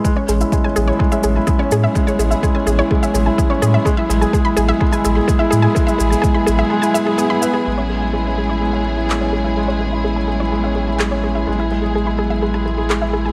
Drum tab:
SH |x-xxx-x--xx-x-x-|xxxxx-x--xx-x-x-|x-xxx-x--xx-x-x-|xxxxx-x--xx-x-x-|
CP |----------------|----------------|----------------|----------------|
BD |o---o---o---o---|o---o---o---o---|o---o---o---o---|o---o-----------|

SH |----------------|----------------|----------------|
CP |------------x---|------------x---|------------x---|
BD |----------------|----------------|----------------|